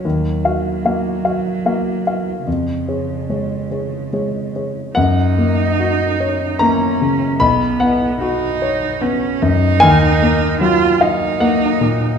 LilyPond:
<<
  \new Staff \with { instrumentName = "Grand piano" } { \time 3/4 \key fis \major \tempo 4 = 74 << { r2. | r2. | fis''2 ais''4 | b''8 fis''2~ fis''8 |
gis''2 fis''4 | } \\ { dis,8 <fis' eis''>8 <ais fis' eis''>8 <fis' eis''>8 <ais fis' eis''>8 <fis' eis''>8 | eis,8 <gis' cis''>8 <gis gis' cis''>8 <gis' cis''>8 <gis gis' cis''>8 <gis' cis''>8 | fis,8 ais8 fis'8 cis''8 ais8 cis8 | b,,8 b8 fis'8 cis''8 b8 fis,8 |
dis,8 ais8 fis8 eis''8 ais8 ais,8 | } >> }
  \new Staff \with { instrumentName = "Cello" } { \time 3/4 \key fis \major fis2. | cis2~ cis8. r16 | dis'2 cis'4 | b4 dis'4 cis'8 dis'8~ |
dis'4 eis'8 dis'4. | }
>>